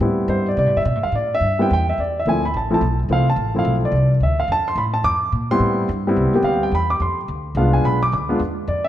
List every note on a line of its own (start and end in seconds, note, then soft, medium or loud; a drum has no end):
0.00 0.27 A2 medium
0.00 0.79 G3 medium
0.00 0.79 B3 medium
0.00 0.79 C4 medium
0.00 0.80 E4 medium
0.28 0.56 G2 medium
0.28 0.46 C5 medium
0.48 0.57 D5 medium
0.57 0.66 C3 medium
0.57 0.76 D5 medium
0.66 0.76 A2 medium
0.76 0.85 G2 medium
0.76 0.81 E5 medium
0.85 0.95 B2 medium
0.85 1.03 E5 medium
0.95 1.03 A2 medium
1.03 1.11 G2 medium
1.03 1.13 F5 medium
1.12 1.40 A2 medium
1.12 1.32 D5 medium
1.35 1.59 E5 loud
1.41 1.68 G2 medium
1.59 1.69 G3 medium
1.59 1.69 B3 medium
1.59 1.69 C4 medium
1.59 1.70 E4 medium
1.59 1.71 G5 medium
1.70 1.97 E2 medium
1.70 1.88 G5 medium
1.89 1.99 E5 medium
1.98 2.25 E2 medium
1.98 2.16 D5 medium
2.19 2.27 E5 medium
2.25 2.53 D2 medium
2.25 2.42 F3 medium
2.25 2.42 A3 medium
2.25 2.42 C4 soft
2.25 2.42 E4 medium
2.25 2.45 G#5 medium
2.45 2.55 B5 medium
2.54 2.80 A1 medium
2.54 2.71 A5 medium
2.70 2.80 F3 medium
2.70 2.81 A3 medium
2.70 2.80 C4 medium
2.70 2.81 E4 medium
2.70 2.99 A5 medium
2.81 3.08 B1 medium
3.09 3.35 C2 medium
3.09 3.25 F3 medium
3.09 3.25 A3 soft
3.09 3.25 C4 medium
3.09 3.26 E4 medium
3.09 3.27 F5 medium
3.30 3.56 A5 medium
3.36 3.64 A1 medium
3.54 3.91 F3 medium
3.54 3.92 A3 soft
3.54 3.92 C4 soft
3.54 3.92 E4 medium
3.59 3.75 F5 medium
3.65 3.91 B1 medium
3.85 4.10 D5 medium
3.92 4.20 C2 medium
4.20 4.47 D2 medium
4.20 4.38 E5 medium
4.40 4.49 F5 medium
4.48 4.75 F2 medium
4.52 4.67 A5 loud
4.68 4.78 C6 medium
4.75 5.03 A2 medium
4.75 4.83 B5 medium
4.94 5.05 A5 medium
5.04 5.31 F2 medium
5.04 5.31 D6 loud
5.32 5.59 A#2 medium
5.51 5.87 G3 medium
5.51 5.87 B3 medium
5.51 5.87 C4 medium
5.51 5.88 E4 medium
5.51 6.48 C6 loud
5.60 5.87 A2 medium
5.89 6.16 G2 medium
6.07 6.33 G3 medium
6.07 6.33 B3 medium
6.07 6.33 C4 medium
6.07 6.34 E4 medium
6.16 6.32 C2 medium
6.33 6.71 G3 medium
6.33 6.71 B3 medium
6.33 6.71 C4 medium
6.33 6.71 G4 medium
6.33 muted upright bass stroke soft
6.42 6.71 D2 medium
6.42 6.62 F5 medium
6.63 6.74 G5 medium
6.72 6.99 E2 medium
6.72 6.90 B5 medium
6.90 7.00 D6 medium
7.00 7.27 F2 medium
7.00 7.17 C6 medium
7.28 7.54 D2 medium
7.55 7.83 C2 medium
7.55 7.98 G#3 medium
7.55 7.98 B3 medium
7.55 7.98 D4 medium
7.55 7.99 F4 medium
7.55 7.74 F5 medium
7.73 7.85 G#5 medium
7.84 8.11 B1 medium
7.84 8.02 B5 medium
8.03 8.12 D6 loud
8.12 8.39 D2 medium
8.12 8.29 D6 medium
8.29 8.39 G#3 medium
8.29 8.39 B3 medium
8.29 8.39 D4 medium
8.29 8.39 F4 medium
8.39 8.67 E2 medium
8.67 8.88 F2 medium
8.67 8.84 D5 medium
8.84 8.88 E5 medium